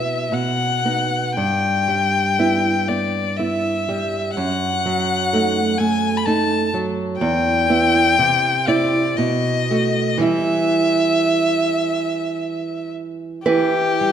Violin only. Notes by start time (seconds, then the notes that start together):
Already playing: E5
0.33 F#5
1.37 G5
2.88 D5
3.37 E5
4.36 F#5
5.78 G#5
6.17 B5
6.26 A5
7.19 G5
8.68 D5
9.17 D#5
10.22 E5
13.45 G4